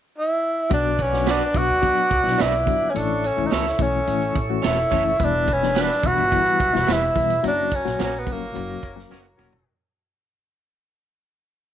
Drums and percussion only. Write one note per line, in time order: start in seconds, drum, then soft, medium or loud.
0.71 kick loud
0.71 closed hi-hat medium
0.99 kick medium
0.99 closed hi-hat medium
1.13 snare soft
1.27 snare medium
1.27 closed hi-hat medium
1.54 kick medium
1.54 closed hi-hat medium
1.83 kick medium
1.83 closed hi-hat medium
1.97 closed hi-hat soft
2.11 kick medium
2.11 closed hi-hat medium
2.27 snare soft
2.40 snare loud
2.40 closed hi-hat medium
2.67 kick medium
2.67 closed hi-hat medium
2.95 closed hi-hat medium
3.24 closed hi-hat medium
3.51 snare medium
3.51 closed hi-hat medium
3.67 snare soft
3.79 kick loud
3.79 closed hi-hat medium
4.07 closed hi-hat medium
4.22 closed hi-hat soft
4.35 kick medium
4.35 closed hi-hat medium
4.64 snare loud
4.64 closed hi-hat medium
4.92 kick medium
4.92 open hi-hat soft
5.19 kick loud
5.19 closed hi-hat medium
5.48 kick medium
5.48 closed hi-hat medium
5.63 snare soft
5.76 snare loud
5.76 closed hi-hat medium
5.91 snare soft
6.03 kick loud
6.03 closed hi-hat medium
6.32 kick medium
6.32 closed hi-hat medium
6.46 closed hi-hat soft
6.60 kick medium
6.60 closed hi-hat medium
6.75 snare soft
6.88 snare loud
6.88 closed hi-hat medium
7.16 kick medium
7.16 closed hi-hat medium
7.30 closed hi-hat medium
7.44 closed hi-hat medium
7.72 kick medium
7.72 closed hi-hat medium
7.86 snare soft
8.00 snare loud
8.00 closed hi-hat medium
8.27 kick loud
8.27 closed hi-hat medium
8.55 closed hi-hat medium
8.83 kick medium
8.83 closed hi-hat medium
8.99 snare soft
9.12 snare medium
9.39 mid tom medium
9.53 floor tom medium